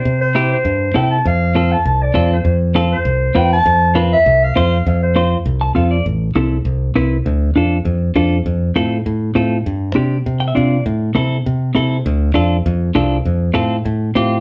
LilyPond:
<<
  \new Staff \with { instrumentName = "Clarinet" } { \time 4/4 \key f \lydian \tempo 4 = 200 c''8 c''4 c''4. g''8 a''8 | f''4. a''8 a''8 d''4 c''8~ | c''8 r4 c''4. g''8 a''8~ | a''4 r8 e''4 f''4. |
f''8 c''4 r2 r8 | r1 | r1 | r1 |
r1 | r1 | r1 | r1 | }
  \new Staff \with { instrumentName = "Clean electric guitar" } { \time 4/4 \key f \lydian << { r1 | r1 | r1 | r1 |
r2 r8 a''8 f''8 d''8 | r1 | r1 | r1 |
r2 r8 g''16 e''16 d''4 | r1 | r1 | r1 | } \\ { r4 <c' e' g'>8 r4. <c' e' a'>8 r8 | r4 <c' f' a'>8 r4. <c' f' a'>8 r8 | r4 <c' f' a'>8 r4. <c' f' b'>8 r8 | r4 <c' f' b'>8 r4. <c' f' c''>8 r8 |
r4 <c' f' c''>8 r4. <c' f' a'>8 r8 | r4 <c' e' a'>8 r4. <c' e' b'>8 r8 | r4 <d' f' a'>8 r4. <d' f' a'>8 r8 | r4 <c' f' a'>8 r4. <c' f' a'>8 r8 |
r4 <c' d' g'>8 r4. <c' d' f'>8 r8 | r4 <c' e' a'>8 r4. <c' e' a'>8 r8 | r4 <d' f' a'>8 r4. <d' f' a'>8 r8 | r4 <c' f' a'>8 r4. <c' f' g'>8 r8 | } >> }
  \new Staff \with { instrumentName = "Fingered electric bass" } { \clef bass \time 4/4 \key f \lydian c2 g,4 c4 | f,2 c,4 f,4 | f,2 c,4 f,4 | f,2 c,4 f,4 |
f,2 c,4 f,4 | a,,4 c,4 c,4 c,4 | d,4 f,4 f,4 f,4 | f,4 a,4 a,4 a,4 |
g,4 c4 c4 c4 | a,4 c4 c4 c4 | d,4 f,4 f,4 c,4 | f,4 a,4 a,4 a,4 | }
>>